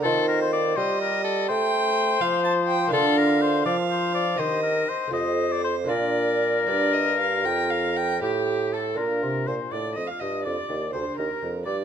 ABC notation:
X:1
M:12/8
L:1/16
Q:3/8=82
K:Bb
V:1 name="Violin"
c6 e6 g6 f2 a2 g2 | f6 f6 e6 c6 | d6 d2 e2 f2 g2 f2 g2 G4 A2 | B4 c2 d2 e f e2 d4 c2 B4 d2 |]
V:2 name="Oboe"
A2 B c d2 c2 B2 A2 c12 | A2 B2 c2 d2 c2 d2 c2 B2 c2 e3 d c2 | B16- B2 G4 A2 | B4 c2 d2 e f e2 d4 c2 B4 d2 |]
V:3 name="Lute"
[A,CF]24 | [B,DF]12 [CG]6 [A,CF]6 | [B,DF]24 | [B,DF]24 |]
V:4 name="Lute" clef=bass
E,6 G,6 A,6 F,6 | D,6 F,6 E,4 z2 F,,6 | B,,6 G,,6 F,,6 A,,6 | B,,2 C,2 B,,2 A,,2 F,,2 G,,2 F,,2 E,,2 D,,2 E,,2 F,,2 G,,2 |]
V:5 name="Bassoon" clef=bass
E,6 G,6 A,6 F,6 | D,6 F,6 E,4 z2 F,,6 | B,,6 G,,6 F,,6 A,,6 | B,,2 C,2 B,,2 A,,2 F,,2 G,,2 F,,2 E,,2 D,,2 E,,2 F,,2 G,,2 |]